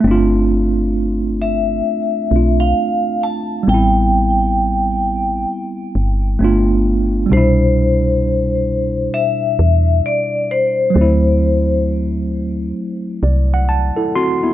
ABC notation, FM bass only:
X:1
M:4/4
L:1/16
Q:"Swing 16ths" 1/4=66
K:Gmix
V:1 name="FM bass" clef=bass
G,,,8 z2 B,,,2 z4 | A,,,8 z2 G,,,2 G,,,4 | C,,8 z2 E,,2 z4 | D,,8 z2 C,,3 z3 |]